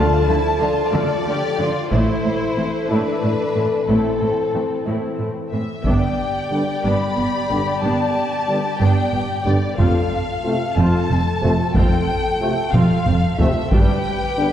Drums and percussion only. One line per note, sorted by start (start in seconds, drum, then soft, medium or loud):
1.92 taiko soft
5.84 taiko medium
9.78 taiko medium
11.75 taiko medium
12.74 taiko mid medium
13.06 taiko low-mid medium
13.39 taiko low medium
13.72 taiko medium